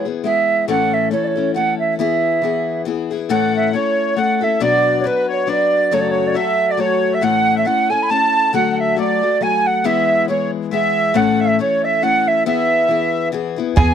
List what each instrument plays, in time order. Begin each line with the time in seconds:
Already playing: steel-string acoustic guitar E3
0.05 steel-string acoustic guitar B3 E4 G#4
0.24 steel-string acoustic guitar G#3 B3 E4 G#4, flute E5
0.68 steel-string acoustic guitar A2 E3 A3 C#4 E4 A4, flute F#5
0.94 flute E5
1.11 steel-string acoustic guitar A3 C#4 E4 A4, flute C#5
1.24 flute C#5 D5
1.36 steel-string acoustic guitar A3 C#4 E4 A4
1.40 flute C#5
1.54 steel-string acoustic guitar A3 C#4 E4 A4, flute F#5
1.80 flute E5
1.99 steel-string acoustic guitar E3 B3 E4 G#4, flute E5
2.42 steel-string acoustic guitar E3 B3 E4 G#4
2.85 steel-string acoustic guitar E3 B3 E4 G#4
3.11 steel-string acoustic guitar B3 E4 G#4
3.29 steel-string acoustic guitar A2 E3 A3 C#4 E4 A4, accordion F#5, flute F#5
3.56 flute E5
3.73 steel-string acoustic guitar A3 C#4 E4 A4, accordion C#5, flute C#5
4.16 steel-string acoustic guitar A3 C#4 E4 A4, accordion F#5, flute F#5
4.37 accordion F#5
4.41 steel-string acoustic guitar A3 C#4 E4 A4, accordion E5, flute E5
4.60 steel-string acoustic guitar B2 F#3 D4 F#4 B4, accordion D5, flute D5
5.00 steel-string acoustic guitar F#3, accordion B4, flute C#5
5.05 steel-string acoustic guitar D4 F#4 B4, flute B4
5.28 accordion C#5, flute C#5
5.47 steel-string acoustic guitar F#3 D4 F#4 B4, accordion D5
5.51 flute D5
5.91 steel-string acoustic guitar F#2 C#3 F#3 A3 F#4 A4, accordion C#5, flute C#5
6.01 flute D5
6.09 accordion C#5, flute C#5
6.27 flute D5
6.34 steel-string acoustic guitar F#3 A3 F#4 A4, accordion E5, flute E5
6.69 accordion D5, flute D5
6.77 steel-string acoustic guitar F#3 A3 F#4 A4, accordion C#5, flute C#5
7.13 accordion E5, flute E5
7.21 steel-string acoustic guitar A2 E3 A3 C#4 E4 A4, accordion F#5, flute F#5
7.55 accordion E5, flute E5
7.65 steel-string acoustic guitar A3 C#4 E4 A4, accordion F#5, flute F#5
7.89 steel-string acoustic guitar A3 C#4 E4 A4, accordion G#5, flute G#5
8.03 flute B5
8.09 steel-string acoustic guitar A3 C#4 E4 A4, accordion A5, flute A5
8.53 steel-string acoustic guitar D3 F#3 A3 F#4 A4, accordion F#5, flute F#5
8.72 flute F#5
8.79 accordion E5, flute E5
8.96 steel-string acoustic guitar F#3 A3 F#4 A4, accordion D5, flute D5
9.21 steel-string acoustic guitar A3 F#4 A4
9.41 steel-string acoustic guitar F#3 A3 F#4 A4, accordion G#5, flute G#5
9.66 accordion F#5, flute F#5
9.84 steel-string acoustic guitar E3 G#3 B3 E4 G#4, accordion E5, flute E5
10.28 steel-string acoustic guitar G#3 B3 E4 G#4, accordion C#5, flute C#5
10.71 steel-string acoustic guitar G#3 B3 E4 G#4, accordion E5, flute E5
11.14 steel-string acoustic guitar A2 E3 A3 C#4 E4 A4, accordion F#5, flute F#5
11.40 accordion E5, flute E5
11.59 steel-string acoustic guitar A3 C#4 E4 A4, accordion C#5, flute C#5
11.83 accordion E5, flute E5
12.02 steel-string acoustic guitar A3 C#4 E4 A4, accordion F#5, flute F#5
12.27 accordion E5, flute E5
12.45 steel-string acoustic guitar E3 B3 E4 G#4, accordion E5, flute E5
12.88 steel-string acoustic guitar E3 B3 E4 G#4
13.32 steel-string acoustic guitar E3 B3 E4 G#4
13.56 steel-string acoustic guitar B3 E4 G#4
13.76 upright bass E2, steel-string acoustic guitar E3 B3 E4 G#4, five-string banjo G#4, accordion G#5, flute G#5, bodhran